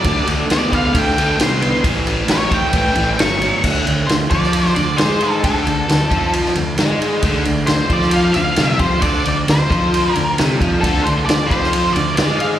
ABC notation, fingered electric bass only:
X:1
M:4/4
L:1/8
Q:1/4=134
K:Dm
V:1 name="Fingered electric bass" clef=bass
D,, D,, D,, D,, D,, D,, C,,2 | A,,, A,,, A,,, A,,, A,,, A,,, G,,,2 | D,, D,, D,, F,,2 D,, ^G,,2 | D,, D,, D,, F,,2 D,, ^G,,2 |
D,, D,, D,, F,,2 D,, C,, F,, | D,, D,, D,, F,,2 D,, C,, F,, | D,, D,, D,, F,,2 D,, ^G,,2 |]